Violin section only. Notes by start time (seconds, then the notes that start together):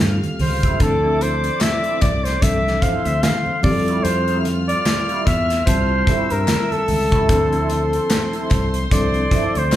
0.01 F5 F6
0.82 D5 D6
2.83 C5 C6
3.65 F4 F6
6.09 E5 E6
7.29 C5 C6